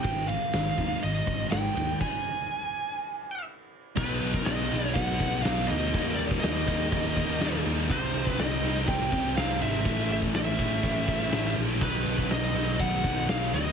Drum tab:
CC |----------------|x---------------|x-x-x-x-x-x-x-x-|x-x-x-x-x-x-x-x-|
RD |x-x-x-x-x-x-x-x-|----------------|----------------|----------------|
SD |----o-------o---|----------------|----o--o----oo--|----o-------oo--|
BD |o-----o---o-----|o---------------|o--o----o-o-----|o--o--o-o-o-----|

CC |x-x-x-x-x-x-x-x-|x-x-x-x-x-x-x-x-|x-x-x-x-x-x-x-x-|
RD |----------------|----------------|----------------|
SD |----o--o----o---|----o-------oo--|----o--o----oo--|
BD |o--o----o-o-----|o--o--o-o-o-----|o--o----o-o-----|